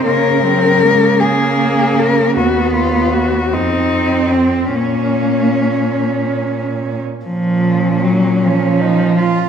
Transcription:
X:1
M:6/8
L:1/16
Q:3/8=51
K:Bbm
V:1 name="Cello"
B6 A4 B2 | ^F2 =F2 ^F2 E4 C2 | B,6 z6 | D12 |]
V:2 name="Cello"
D2 C2 B,8 | =B,6 C6 | D8- D3 z | z6 D2 E2 F2 |]
V:3 name="Cello"
B,2 G,2 A,2 B,6 | =B,6 C6 | D8- D z3 | F,4 G,2 F,6 |]
V:4 name="Cello" clef=bass
D,12 | ^D,,6 F,,6 | B,,8- B,,3 z | B,,12 |]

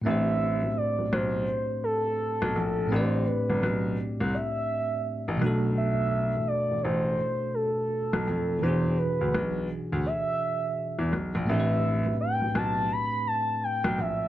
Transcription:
X:1
M:4/4
L:1/16
Q:"Swing 16ths" 1/4=84
K:Ador
V:1 name="Soft synth lead"
e4 d2 c4 A6 | c2 B4 z2 e6 z2 | e4 d2 c4 A6 | c2 B4 z2 e6 z2 |
e4 g2 a2 b2 a2 g2 e2 |]
V:2 name="Tine electric piano"
[A,,A,CDGc]16 | [A,,A,CDGd]12- [A,,A,CDGd]2 [B,,A,DFA]2- | [B,,A,DFA]12- [B,,A,DFA]2 z2 | [B,,E,DF^G]16 |
[A,,A,CDG_B=B]16 |]
V:3 name="Grand piano" clef=bass
A,,,3 B,,, z B,,, B,,,2 z4 z B,,, _B,,,2 | A,,,2 z G,,, B,,,2 z C,, z4 z A,,, B,,,2- | B,,,3 A,,, z A,,, A,,,2 z4 z B,,, =F,,2 | E,,2 z D,, B,,,2 z D,, z4 z E,, B,,, _B,,, |
A,,,3 B,,, z B,,, B,,,2 z4 z B,,, _B,,,2 |]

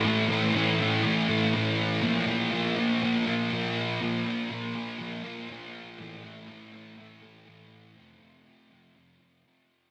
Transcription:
X:1
M:4/4
L:1/8
Q:1/4=121
K:Aphr
V:1 name="Distorted electric guitar" clef=bass
[A,,E,A,] [E,A,] [A,,E,A,] [E,A,] [A,,E,A,] [E,A,] [A,,E,A,]2 | [B,,F,B,] [F,B,] [B,,F,B,] [F,B,] [B,,F,B,] [F,B,] [B,,F,B,]2 | [B,,F,B,] [F,B,] [B,,F,B,] [F,B,] [B,,F,B,] [F,B,] [B,,F,B,]2 | [A,,E,A,] [E,A,] [A,,E,A,] [E,A,] [A,,E,A,] [E,A,] [A,,E,A,]2 |
[F,,C,F,] [C,F,] [F,,C,F,] [C,F,] [F,,C,F,] [C,F,] [F,,C,F,]2 |]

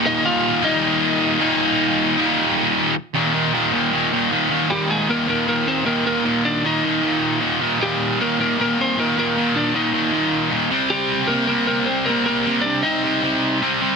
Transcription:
X:1
M:4/4
L:1/8
Q:1/4=155
K:Eb
V:1 name="Lead electric guitar"
[Ee] [Ff]2 [Ee]4- [Ee]- | [Ee]6 z2 | z8 | [G,G] [A,A] [B,B] [B,B] [B,B] [Cc] [B,B] [B,B]- |
[B,B] [Dd] [Ee]4 z2 | [G,G]2 [B,B] [B,B] [B,B] [Cc] [B,B] [B,B]- | [B,B] [Dd] [Ee]4 z2 | [G,G]2 [B,B] [B,B] [B,B] [Cc] [B,B] [B,B]- |
[B,B] [Dd] [Ee]4 z2 |]
V:2 name="Distorted electric guitar" clef=bass
[E,,B,,E,G,B,E]3 [E,,B,,E,G,B,E]4 [E,,B,,E,G,B,E]- | [E,,B,,E,G,B,E]3 [E,,B,,E,G,B,E]4 z | [E,,B,,E,] [E,,B,,E,] [E,,B,,E,] [E,,B,,E,] [E,,B,,E,] [E,,B,,E,] [E,,B,,E,] [E,,B,,E,] | [E,,B,,E,]2 [E,,B,,E,] [E,,B,,E,] [E,,B,,E,]2 [E,,B,,E,] [E,,B,,E,] |
[E,,B,,E,]2 [E,,B,,E,] [E,,B,,E,] [E,,B,,E,]2 [E,,B,,E,] [E,,B,,E,] | [E,,B,,E,]2 [E,,B,,E,] [E,,B,,E,] [E,,B,,E,]2 [E,,B,,E,] [E,,B,,E,] | [E,,B,,E,]2 [E,,B,,E,] [E,,B,,E,] [E,,B,,E,]2 [E,,B,,E,] [C,G,C] | [C,G,C]2 [C,G,C] [C,G,C] [C,G,C]2 [C,G,C] [C,G,C] |
[C,G,C]2 [C,G,C] [C,G,C] [C,G,C]2 [C,G,C] [C,G,C] |]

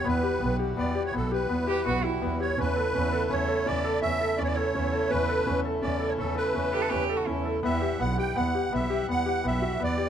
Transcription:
X:1
M:7/4
L:1/16
Q:1/4=166
K:Edor
V:1 name="Accordion"
B6 z2 d3 c A2 B8 z4 c2 | B8 c4 d4 e4 d/2 c/2 d c6 | B6 z2 d3 c A2 B8 z6 | e4 f2 g2 f4 e4 f4 e4 d4 |]
V:2 name="Cello"
z16 z2 G2 F2 E3 z3 | z24 z4 | z16 z2 G A G3 F E3 z | z24 z4 |]
V:3 name="Felt piano"
B,2 G2 B,2 G2 B,2 G2 B,2 G2 B,2 G2 B,2 F2 B,2 G2 | C2 A2 C2 A2 C2 A2 C2 A2 C2 A2 C2 A2 C2 A2 | C2 A2 C2 A2 C2 A2 C2 A2 C2 A2 C2 A2 C2 A2 | B,2 G2 B,2 G2 B,2 G2 B,2 G2 B,2 G2 B,2 F2 B,2 G2 |]
V:4 name="Harmonium" clef=bass
[E,G,F]24- [E,G,F]4 | [C,A,E]24- [C,A,E]4- | [C,A,E]24- [C,A,E]4 | [E,G,f]24- [E,G,f]4 |]
V:5 name="Double bass" clef=bass
E,,4 B,,,4 E,,4 B,,,4 E,,2 z2 B,,,4 E,,4 | E,,4 E,,4 E,,4 E,,4 E,,2 z2 E,,4 E,,4 | E,,4 E,,4 E,,4 E,,4 E,,2 z2 E,,4 E,,4 | E,,4 B,,,4 E,,4 B,,,4 E,,2 z2 B,,,4 E,,4 |]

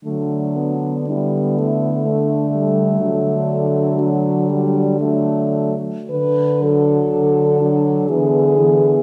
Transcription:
X:1
M:3/4
L:1/8
Q:1/4=60
K:D
V:1 name="French horn"
D2 E2 D2 | D2 D2 D z | B A3 ^G2 |]
V:2 name="French horn"
A, B, B,2 A, G, | F,4 F, z | z D2 D B, B, |]
V:3 name="French horn" clef=bass
F,2 G, A,3- | A,2 F, G, A, z | z F,2 F, E, E, |]
V:4 name="French horn" clef=bass
D,6 | D,4- D, z | D,2 D,2 D,2 |]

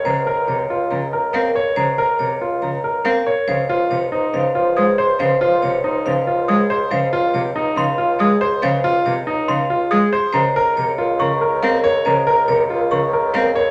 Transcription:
X:1
M:4/4
L:1/8
Q:1/4=140
K:Db
V:1 name="Celesta"
b z4 z f z | b z4 z f z | f z4 z e' z | f z4 z e' z |
f z3 c' z e' z | f z3 c' z e' z | b z3 d' z f z | b z3 d' z f z |]
V:2 name="Vibraphone"
c z d z b z B z | c z d z b z B z | c z d z f z A z | c z d z f z A z |
c z d z f z A z | c z d z f z A z | c z d z b z B z | c z d z b z B z |]
V:3 name="French horn"
z8 | z8 | c c c c c c c c | c c c c c c c z |
z8 | z8 | B B B B B B B B | B B B B B B B z |]
V:4 name="Grand piano"
z B z F z B z d | z B z F z B z d | z F z E z F z c | z F z E z F z c |
z F z E z F z c | z F z E z F z c | z B z F z B z d | z B z F z B z d |]
V:5 name="Cello" clef=bass
D, z C, z D, z C z | D, z C, z D, z C z | D, z C, z D, z A, z | D, z C, z D, z A, z |
D, z C, z D, z A, z | D, z C, z D, z A, z | D, z C, z D, z C z | D, z C, z D, z C z |]
V:6 name="Bassoon" clef=bass
D,,8- | D,,8 | D,,8- | D,,8- |
D,,8- | D,,8 | D,,8- | D,,8 |]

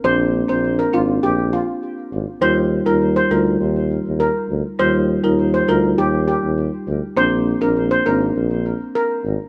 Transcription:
X:1
M:4/4
L:1/16
Q:1/4=101
K:Eb
V:1 name="Steel pan"
c z2 c z B F z G z F z4 z | c z2 B z c B z4 z B3 z | c z2 B z c B z G z G z4 z | c z2 B z c B z4 z B3 z |]
V:2 name="Marimba"
[B,CD]3 [B,CD] z2 [B,CD] z8 z | [G,EF]3 [G,EF] z2 [G,EF] z8 z | [G,EF]3 [G,EF] z2 [G,EF] z8 z | [B,CD]3 [B,CD] z2 [B,CD] z8 z |]
V:3 name="Tuba" clef=bass
B,,,3 B,,,3 A,,,2 B,,,3 z3 A,,, z | E,,3 E,,3 D,,2 E,,3 E,,2 z D,, z | E,,3 E,,3 D,,2 E,,3 E,,2 z D,, z | B,,,3 B,,,3 A,,,2 B,,,3 z3 A,,, z |]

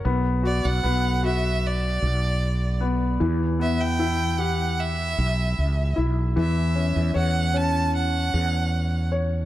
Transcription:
X:1
M:4/4
L:1/16
Q:1/4=76
K:Bm
V:1 name="Violin"
z2 d f3 e2 d6 z2 | z2 e g3 f2 e6 z2 | e4 f2 a2 f6 z2 |]
V:2 name="Grand piano"
B,2 F2 B,2 F8 B,2 | E,2 B,2 E2 G8 E2 | E,2 C2 c2 C8 c2 |]
V:3 name="Fretless electric bass" clef=bass
B,,,3 B,,, B,,,6 B,,,6 | E,,8- E,,2 B,,,2 C,,2 B,,,2 | E,,3 E,, E,,6 E,,6 |]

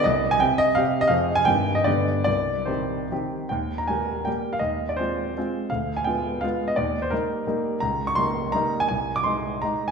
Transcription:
X:1
M:3/4
L:1/16
Q:1/4=165
K:Cm
V:1 name="Grand piano"
e3 a g2 e2 f3 e | f3 a g3 e d4 | d4 c4 z4 | [K:Eb] g3 b a4 g3 f |
e3 d c8 | f3 a g4 f3 e | d3 c B8 | b3 _d' c'4 b3 a |
a3 d' c'4 b3 a |]
V:2 name="Grand piano"
C,,4 [C,CG]4 [C,CG]4 | [F,,C,CA]4 [G,,E,CG]4 [G,,D,=B,G]4 | C,,4 [E,CG]4 [E,CG]4 | [K:Eb] E,,4 [G,B,G]4 [G,B,G]4 |
E,,4 [A,CF]4 [A,CF]4 | D,,4 [A,=B,F]4 [A,B,F]4 | E,,4 [G,B,E]4 [G,B,E]4 | _D,,4 [G,B,E]4 [G,B,E]4 |
C,,4 [A,E]4 [A,E]4 |]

